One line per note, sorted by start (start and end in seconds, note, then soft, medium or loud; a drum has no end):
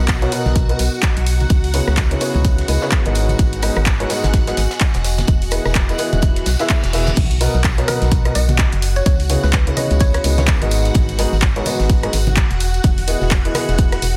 0.00 0.27 B1 loud
0.00 7.17 B3 medium
0.00 2.17 F#4 medium
0.00 7.16 F#4 medium
0.00 2.17 D#5 medium
0.00 7.16 F#5 medium
0.00 0.38 G#5 medium
0.04 2.17 A#5 medium
0.04 clap loud
0.08 kick loud
0.08 snare loud
0.08 closed hi-hat medium
0.08 tambourine medium
0.22 0.31 B2 loud
0.22 0.31 B3 medium
0.22 0.31 F#4 medium
0.22 0.31 A#4 medium
0.22 0.31 C#5 loud
0.22 snare soft
0.22 closed hi-hat soft
0.32 0.66 B2 medium
0.32 0.66 B3 medium
0.32 0.66 F#4 medium
0.32 0.66 A#4 medium
0.32 0.66 D#5 loud
0.32 closed hi-hat medium
0.32 open hi-hat loud
0.32 tambourine medium
0.46 0.74 B1 loud
0.46 snare soft
0.46 tambourine soft
0.46 high conga medium
0.55 kick loud
0.55 closed hi-hat medium
0.55 tambourine medium
0.69 0.79 B2 medium
0.69 0.79 B3 medium
0.69 0.79 F#4 medium
0.69 0.79 A#4 medium
0.69 0.79 D#5 loud
0.69 closed hi-hat medium
0.79 0.89 B1 medium
0.79 closed hi-hat medium
0.79 open hi-hat loud
0.79 tambourine loud
0.94 tambourine soft
1.03 kick loud
1.03 snare loud
1.03 clap loud
1.03 closed hi-hat medium
1.17 1.45 B1 medium
1.17 closed hi-hat medium
1.17 closed hi-hat soft
1.26 closed hi-hat medium
1.26 open hi-hat loud
1.26 tambourine medium
1.40 closed hi-hat soft
1.40 tambourine soft
1.40 high conga medium
1.50 1.81 C#2 loud
1.50 kick loud
1.50 closed hi-hat medium
1.64 open hi-hat medium
1.64 tambourine soft
1.74 1.92 C#3 medium
1.74 1.92 B3 medium
1.74 1.92 E4 medium
1.74 1.92 G#4 medium
1.74 1.92 C#5 medium
1.74 closed hi-hat medium
1.74 open hi-hat loud
1.74 tambourine medium
1.88 2.16 C#2 loud
1.88 3.15 E4 medium
1.88 cross-stick medium
1.88 snare soft
1.88 tambourine soft
1.97 kick loud
1.97 snare loud
1.97 clap loud
1.97 closed hi-hat medium
1.97 tambourine medium
2.11 2.20 C#3 medium
2.11 2.20 B3 medium
2.11 2.20 E4 medium
2.11 2.20 G#4 medium
2.11 2.20 C#5 medium
2.11 closed hi-hat medium
2.17 3.90 C#5 medium
2.17 closed hi-hat medium
2.21 2.66 C#3 medium
2.21 2.66 B3 medium
2.21 2.66 E4 medium
2.21 2.66 G#4 medium
2.21 2.66 C#5 loud
2.21 open hi-hat loud
2.21 tambourine medium
2.25 7.17 G#5 medium
2.34 2.63 C#2 loud
2.34 tambourine soft
2.34 high conga medium
2.44 kick loud
2.44 closed hi-hat loud
2.44 closed hi-hat medium
2.44 tambourine soft
2.58 snare soft
2.58 closed hi-hat medium
2.68 2.78 C#2 medium
2.68 2.80 C#3 medium
2.68 2.80 B3 medium
2.68 2.80 E4 medium
2.68 2.80 G#4 medium
2.68 2.80 D#5 medium
2.68 closed hi-hat medium
2.68 open hi-hat loud
2.68 tambourine medium
2.81 2.99 C#3 medium
2.81 2.99 B3 medium
2.81 2.99 E4 medium
2.81 2.99 G#4 medium
2.81 2.99 C#5 medium
2.81 snare medium
2.81 tambourine soft
2.92 kick loud
2.92 snare loud
2.92 clap loud
2.92 closed hi-hat medium
3.05 3.34 G#1 medium
3.05 3.60 G#2 medium
3.05 3.60 B3 medium
3.05 3.60 F#4 medium
3.05 3.60 G#4 medium
3.05 3.60 D#5 loud
3.05 closed hi-hat soft
3.05 closed hi-hat medium
3.15 closed hi-hat medium
3.15 open hi-hat medium
3.15 tambourine medium
3.24 5.91 F#4 medium
3.29 closed hi-hat soft
3.29 tambourine soft
3.29 high conga medium
3.39 3.70 G#1 loud
3.39 kick loud
3.39 closed hi-hat medium
3.39 tambourine medium
3.46 7.17 D#5 medium
3.53 closed hi-hat medium
3.53 tambourine soft
3.62 3.76 G#2 loud
3.62 3.76 B3 medium
3.62 3.76 F#4 medium
3.62 3.76 G#4 medium
3.62 3.76 D#5 loud
3.62 cross-stick medium
3.62 closed hi-hat medium
3.62 open hi-hat loud
3.62 tambourine medium
3.76 4.05 G#1 loud
3.76 cross-stick medium
3.76 tambourine soft
3.86 kick medium
3.86 snare loud
3.86 clap loud
3.86 closed hi-hat medium
3.86 tambourine medium
3.99 4.09 G#2 loud
3.99 4.09 B3 medium
3.99 4.09 F#4 medium
3.99 4.09 G#4 medium
3.99 4.09 C#5 loud
3.99 snare soft
3.99 closed hi-hat medium
4.09 4.44 G#2 medium
4.09 4.44 B3 medium
4.09 4.44 F#4 medium
4.09 4.44 G#4 medium
4.09 4.44 D#5 loud
4.09 snare loud
4.09 closed hi-hat medium
4.09 open hi-hat loud
4.09 tambourine medium
4.24 4.52 G#1 medium
4.24 snare loud
4.24 closed hi-hat medium
4.24 tambourine soft
4.24 high conga medium
4.33 kick loud
4.33 snare medium
4.33 closed hi-hat medium
4.33 tambourine medium
4.47 4.57 G#2 medium
4.47 4.57 B3 medium
4.47 4.57 F#4 medium
4.47 4.57 G#4 medium
4.47 4.57 D#5 loud
4.47 snare loud
4.47 closed hi-hat medium
4.57 4.67 G#1 medium
4.57 snare loud
4.57 closed hi-hat medium
4.57 open hi-hat loud
4.57 tambourine loud
4.71 snare loud
4.71 closed hi-hat medium
4.71 tambourine soft
4.80 kick loud
4.80 snare loud
4.80 clap loud
4.80 closed hi-hat medium
4.80 tambourine soft
4.94 5.23 E1 medium
4.94 snare loud
4.94 closed hi-hat medium
5.04 snare loud
5.04 closed hi-hat medium
5.04 open hi-hat loud
5.04 tambourine loud
5.18 snare loud
5.18 closed hi-hat soft
5.18 closed hi-hat medium
5.18 tambourine soft
5.18 high conga medium
5.27 5.59 E1 loud
5.27 kick loud
5.27 closed hi-hat medium
5.42 open hi-hat medium
5.42 tambourine soft
5.51 5.70 E3 medium
5.51 5.70 B3 medium
5.51 5.70 E4 medium
5.51 5.70 G#4 medium
5.51 5.70 D#5 medium
5.51 cross-stick medium
5.51 closed hi-hat medium
5.51 open hi-hat loud
5.51 tambourine medium
5.65 5.94 E1 loud
5.65 7.17 E4 medium
5.65 cross-stick medium
5.65 snare soft
5.65 tambourine soft
5.75 kick loud
5.75 snare loud
5.75 clap loud
5.75 closed hi-hat medium
5.89 5.97 E3 medium
5.89 5.97 B3 medium
5.89 5.97 E4 medium
5.89 5.97 G#4 medium
5.89 5.97 D#5 medium
5.89 closed hi-hat medium
5.89 tambourine soft
5.98 6.44 E3 medium
5.98 6.44 B3 medium
5.98 6.44 E4 medium
5.98 6.44 G#4 medium
5.98 6.44 D#5 medium
5.98 closed hi-hat medium
5.98 open hi-hat loud
5.98 tambourine medium
6.13 6.41 E1 loud
6.13 closed hi-hat soft
6.13 tambourine soft
6.13 high conga loud
6.22 kick loud
6.22 closed hi-hat medium
6.22 tambourine medium
6.22 reverse cymbal medium
6.36 snare soft
6.36 closed hi-hat medium
6.46 6.56 B1 loud
6.46 snare loud
6.46 closed hi-hat medium
6.46 open hi-hat loud
6.46 tambourine medium
6.59 6.76 E3 loud
6.59 6.76 B3 medium
6.59 6.76 E4 loud
6.59 6.76 G#4 medium
6.59 6.76 E5 loud
6.59 snare loud
6.59 closed hi-hat medium
6.59 tambourine soft
6.69 kick loud
6.69 snare loud
6.69 clap loud
6.69 closed hi-hat medium
6.83 7.12 E1 medium
6.83 snare loud
6.83 closed hi-hat medium
6.83 tambourine soft
6.93 7.06 B2 medium
6.93 7.06 B3 medium
6.93 7.06 E4 medium
6.93 7.06 G#4 medium
6.93 7.06 E5 medium
6.93 snare loud
6.93 closed hi-hat medium
6.93 open hi-hat loud
6.93 tambourine medium
7.07 snare loud
7.07 closed hi-hat medium
7.07 closed hi-hat soft
7.07 tambourine soft
7.07 high conga loud
7.17 7.48 B1 loud
7.17 14.17 F#4 medium
7.17 14.17 F#5 medium
7.17 kick loud
7.17 closed hi-hat medium
7.17 crash loud
7.17 tambourine medium
7.17 high conga medium
7.31 closed hi-hat medium
7.31 tambourine soft
7.41 7.53 B2 medium
7.41 7.53 B3 medium
7.41 7.54 F#4 medium
7.41 7.53 A#4 medium
7.41 7.53 D#5 loud
7.41 closed hi-hat medium
7.41 open hi-hat loud
7.41 tambourine loud
7.54 7.83 B1 loud
7.54 tambourine soft
7.64 kick loud
7.64 snare loud
7.64 clap loud
7.64 closed hi-hat medium
7.64 tambourine medium
7.77 7.87 B2 loud
7.77 7.87 B3 medium
7.77 7.87 F#4 medium
7.77 7.86 A#4 medium
7.77 7.87 C#5 loud
7.77 snare soft
7.77 closed hi-hat medium
7.88 8.22 B2 medium
7.88 8.22 B3 medium
7.88 8.22 F#4 medium
7.88 8.22 A#4 medium
7.88 8.06 B4 medium
7.88 8.22 D#5 loud
7.88 cross-stick medium
7.88 closed hi-hat medium
7.88 open hi-hat loud
7.88 tambourine medium
7.88 high conga medium
8.02 8.30 B1 loud
8.02 snare medium
8.02 closed hi-hat soft
8.02 tambourine soft
8.11 kick loud
8.11 closed hi-hat medium
8.11 closed hi-hat loud
8.11 tambourine medium
8.25 8.34 B2 medium
8.25 8.35 B3 medium
8.25 8.35 F#4 medium
8.25 8.35 A#4 medium
8.25 8.35 D#5 loud
8.25 cross-stick medium
8.25 closed hi-hat medium
8.35 8.66 B1 medium
8.35 8.54 D#5 medium
8.35 closed hi-hat medium
8.35 open hi-hat loud
8.35 tambourine medium
8.49 closed hi-hat soft
8.49 tambourine soft
8.49 high conga loud
8.58 kick loud
8.58 snare loud
8.58 clap loud
8.58 closed hi-hat medium
8.58 tambourine medium
8.72 9.01 F#1 loud
8.72 closed hi-hat soft
8.72 closed hi-hat medium
8.82 closed hi-hat medium
8.82 open hi-hat loud
8.82 tambourine loud
8.96 9.03 C#5 medium
8.96 closed hi-hat soft
8.96 tambourine soft
9.06 9.37 C#2 loud
9.06 9.15 C#5 medium
9.06 kick loud
9.06 closed hi-hat loud
9.06 closed hi-hat medium
9.06 tambourine medium
9.06 high conga loud
9.20 open hi-hat medium
9.20 tambourine soft
9.29 9.48 C#3 medium
9.29 9.48 B3 medium
9.29 9.48 E4 medium
9.29 9.48 G#4 medium
9.29 9.48 C#5 medium
9.29 closed hi-hat medium
9.29 open hi-hat loud
9.29 tambourine loud
9.43 9.72 C#2 loud
9.43 9.60 B4 medium
9.43 snare medium
9.43 tambourine soft
9.53 kick loud
9.53 snare loud
9.53 clap loud
9.53 closed hi-hat medium
9.67 9.76 C#3 medium
9.67 9.76 B3 medium
9.67 9.76 E4 medium
9.67 9.76 G#4 medium
9.67 9.75 C#5 medium
9.67 closed hi-hat medium
9.77 10.22 C#3 medium
9.77 10.22 B3 medium
9.77 10.22 E4 medium
9.77 10.22 G#4 medium
9.77 10.22 C#5 medium
9.77 9.95 D#5 medium
9.77 closed hi-hat medium
9.77 open hi-hat loud
9.77 tambourine medium
9.77 high conga medium
9.90 10.19 C#2 medium
9.90 closed hi-hat soft
9.90 tambourine soft
10.00 10.09 C#5 medium
10.00 kick loud
10.00 closed hi-hat medium
10.00 tambourine medium
10.14 10.21 C#5 medium
10.14 cross-stick medium
10.14 snare soft
10.14 closed hi-hat medium
10.24 10.55 C#2 medium
10.24 10.36 C#3 medium
10.24 10.36 B3 medium
10.24 10.36 E4 medium
10.24 10.36 G#4 medium
10.24 10.36 D#5 medium
10.24 closed hi-hat medium
10.24 open hi-hat loud
10.24 tambourine medium
10.38 10.54 C#3 medium
10.38 10.54 B3 medium
10.38 10.54 E4 medium
10.38 10.54 G#4 medium
10.38 10.54 C#5 medium
10.38 snare medium
10.38 closed hi-hat soft
10.38 tambourine soft
10.38 high conga loud
10.48 kick loud
10.48 snare loud
10.48 clap loud
10.48 closed hi-hat medium
10.48 tambourine medium
10.62 10.90 G#1 loud
10.62 11.16 G#2 medium
10.62 11.16 B3 medium
10.62 11.16 F#4 medium
10.62 11.16 G#4 medium
10.62 11.16 D#5 loud
10.62 closed hi-hat medium
10.62 closed hi-hat soft
10.71 closed hi-hat medium
10.71 open hi-hat loud
10.71 tambourine loud
10.85 closed hi-hat soft
10.85 tambourine soft
10.94 11.26 G#1 loud
10.94 kick loud
10.94 closed hi-hat loud
10.94 closed hi-hat medium
10.94 tambourine medium
10.94 high conga medium
11.09 closed hi-hat soft
11.09 tambourine soft
11.19 11.32 G#2 loud
11.19 11.31 B3 medium
11.19 11.32 F#4 medium
11.19 11.31 G#4 medium
11.19 11.32 D#5 loud
11.19 closed hi-hat medium
11.19 open hi-hat loud
11.19 tambourine loud
11.33 11.61 G#1 loud
11.33 tambourine soft
11.42 kick loud
11.42 snare loud
11.42 clap loud
11.42 closed hi-hat medium
11.56 11.64 G#2 loud
11.56 11.64 B3 medium
11.56 11.64 F#4 medium
11.56 11.64 G#4 medium
11.56 11.65 C#5 loud
11.56 snare soft
11.56 closed hi-hat medium
11.65 12.00 G#2 medium
11.65 12.00 B3 medium
11.65 12.00 F#4 medium
11.65 12.00 G#4 medium
11.65 12.00 D#5 loud
11.65 closed hi-hat medium
11.65 open hi-hat loud
11.65 tambourine loud
11.65 high conga medium
11.79 12.08 G#1 medium
11.79 snare medium
11.79 closed hi-hat soft
11.79 tambourine soft
11.90 kick loud
11.90 closed hi-hat medium
12.03 12.12 G#2 loud
12.03 12.12 B3 medium
12.03 12.12 F#4 medium
12.03 12.12 G#4 medium
12.03 12.12 D#5 loud
12.03 cross-stick medium
12.03 closed hi-hat medium
12.13 12.44 G#1 medium
12.13 closed hi-hat medium
12.13 open hi-hat loud
12.13 tambourine loud
12.27 closed hi-hat soft
12.27 tambourine soft
12.27 high conga medium
12.37 kick loud
12.37 snare loud
12.37 clap loud
12.37 closed hi-hat medium
12.37 tambourine medium
12.51 12.79 E1 loud
12.51 closed hi-hat medium
12.51 closed hi-hat soft
12.60 closed hi-hat medium
12.60 open hi-hat loud
12.60 tambourine medium
12.74 closed hi-hat soft
12.74 tambourine soft
12.83 13.15 E1 loud
12.83 kick loud
12.83 closed hi-hat medium
12.83 tambourine medium
12.83 high conga medium
12.98 open hi-hat medium
12.98 tambourine soft
13.07 13.26 E3 medium
13.07 13.26 B3 medium
13.07 13.26 E4 medium
13.07 13.26 G#4 medium
13.07 13.26 D#5 medium
13.07 closed hi-hat medium
13.07 open hi-hat loud
13.07 tambourine loud
13.21 13.50 E1 loud
13.21 snare soft
13.21 tambourine soft
13.30 kick loud
13.30 snare loud
13.30 clap loud
13.30 closed hi-hat medium
13.30 tambourine medium
13.45 13.53 E3 medium
13.45 13.53 B3 medium
13.45 13.53 E4 medium
13.45 13.53 G#4 medium
13.45 13.53 D#5 medium
13.45 closed hi-hat medium
13.54 14.00 E3 medium
13.54 14.00 B3 medium
13.54 14.00 E4 medium
13.54 14.00 G#4 medium
13.54 14.00 D#5 loud
13.54 cross-stick medium
13.54 snare loud
13.54 closed hi-hat medium
13.54 open hi-hat loud
13.54 tambourine medium
13.54 high conga medium
13.69 13.97 E1 medium
13.69 snare soft
13.69 closed hi-hat soft
13.69 tambourine soft
13.78 kick loud
13.78 closed hi-hat medium
13.92 cross-stick medium
13.92 snare soft
13.92 closed hi-hat medium
14.02 14.17 E1 medium
14.02 closed hi-hat medium
14.02 open hi-hat loud
14.02 tambourine loud